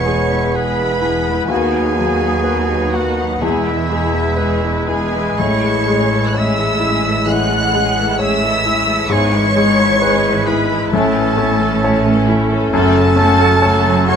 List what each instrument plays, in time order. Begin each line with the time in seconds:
Already playing: double bass section E1, cello section E2, grand piano B2 G#3 E4 G#4, bassoon B3, clarinet E4, flute section C#5, oboe C#5, violin section C#6
0.05 grand piano G#3, viola section G#3 B3, violin section G#4
0.30 viola section E3 G#3, violin section E4 B4
0.53 viola section G#3, violin section G#4 B5, grand piano G#4, flute section B4, oboe B4
0.57 viola section B3
0.77 viola section E3, violin section E4 B4
0.81 viola section G#3
1.01 grand piano E4, violin section G#4
1.05 viola section G#3 B3
1.25 violin section E4 B4
1.29 viola section E3 G#3
1.48 grand piano D#2, cello section D#2, double bass section D#2, french horn section B3 F#4, viola section B3, violin section D#4 F#4 G#5, clarinet F#4, flute section G#4, oboe G#4
1.52 viola section D#3
1.72 viola section F#3 D#4, violin section B3 D#4
1.95 viola section D#3 B3, grand piano F#3, violin section D#4 F#4
2.19 viola section F#3 D#4, violin section B3 D#4
2.42 viola section D#3 B3, violin section D#4 F#4, grand piano B4
2.65 violin section B3 D#4
2.71 viola section F#3 D#4
2.91 violin section D#4 F#4 F#5, flute section F#4, grand piano F#4
2.95 viola section D#3 B3, oboe F#4
3.15 violin section B3 D#4
3.20 viola section F#3 D#4
3.40 double bass section E1, grand piano E2, cello section E2, bassoon G#3, french horn section G#3 E4, viola section B3, flute section E4, clarinet E4, oboe E4, violin section G#4 E5
3.44 viola section G#3
3.64 violin section E4 B4
3.68 viola section E3 G#3
3.89 grand piano G#3, viola section B3, violin section G#4
3.93 viola section G#3
4.15 viola section E3 G#3, violin section E4 B4
4.37 viola section G#3 B3, violin section G#4, grand piano B4
4.63 viola section E3 G#3, violin section E4 B4
4.86 viola section G#3 B3, grand piano E4, violin section G#4 G#5, flute section G#4, oboe G#4
5.11 viola section E3 G#3, violin section E4 B4
5.38 double bass section A1, grand piano A2, cello section A2, french horn section G#3 E4, viola section G#3 A3, violin section C#4 G#4 C#6, flute section C#5, oboe C#5
5.63 viola section E3 G#3, violin section E4 A4
5.87 viola section G#3 A3, grand piano G#3, violin section C#4 G#4
6.10 viola section E3 G#3, violin section E4 A4
6.28 violin section F#6
6.34 viola section G#3 A3, violin section C#4 G#4 E6, grand piano C#5, flute section E5, oboe E5
6.58 viola section E3 G#3, violin section E4 A4
6.80 viola section G#3 A3, violin section C#4 G#4, grand piano E4
7.04 viola section E3 G#3, violin section E4 A4
7.26 grand piano E3, french horn section G#3 E4, viola section G#3 A3, violin section C#4 G#4 F#6, flute section F#5, oboe F#5
7.51 viola section E3 G#3, violin section E4 A4
7.74 grand piano G#3, viola section G#3 A3, violin section C#4 G#4
7.98 viola section E3 G#3, violin section E4 A4
8.19 viola section G#3 A3, violin section C#4 G#4 E6, grand piano C#5, oboe E5, flute section E5
8.43 viola section E3 G#3, violin section E4 A4
8.66 viola section G#3 A3, violin section C#4 G#4, grand piano E4
8.87 viola section E3 G#3, violin section E4 A4
9.09 double bass section G#1, grand piano G#2, cello section G#2, bassoon G#3, viola section G#3 B3, french horn section G#3 E4, clarinet E4, violin section G#4 C#6, oboe C#5, flute section C#5
9.33 viola section E3 G#3, violin section E4 B4
9.56 grand piano G#3, viola section G#3 B3, violin section G#4
9.79 viola section E3 G#3, violin section E4 B4
10.01 viola section G#3 B3, violin section G#4, grand piano B4
10.24 viola section E3 G#3, violin section E4 B4
10.47 viola section G#3 B3, grand piano E4, violin section G#4 B5, oboe B4, flute section B4
10.71 viola section E3 G#3, violin section E4 B4
10.91 double bass section A1, cello section A2, grand piano A2, bassoon A3, french horn section A3 C#4, viola section A3, clarinet C#4, violin section E4 A5, flute section A4, oboe A4
11.15 viola section E3 C#4, violin section C#4 A4
11.37 viola section A3, grand piano C#4, violin section E4
11.59 viola section E3 C#4, violin section C#4 A4
11.83 viola section A3, violin section E4, grand piano C#5
12.06 viola section E3 C#4, violin section C#4 A4
12.27 viola section A3, violin section E4, grand piano E4
12.50 viola section E3 C#4, violin section C#4 A4
12.73 double bass section F#1, grand piano F#2, cello section F#2, viola section A3, french horn section A3 C#4, violin section F#4 A4 A5, flute section A4, oboe A4
12.96 viola section F#3, violin section C#4 F#4
13.16 viola section A3, grand piano C#4, violin section F#4 A4
13.41 viola section F#3, violin section C#4 F#4
13.62 viola section A3, violin section F#4 A4, grand piano C#5
13.84 viola section F#3, violin section C#4 F#4
14.08 viola section A3, violin section F#4 A4 C#6, grand piano F#4, oboe C#5, flute section C#5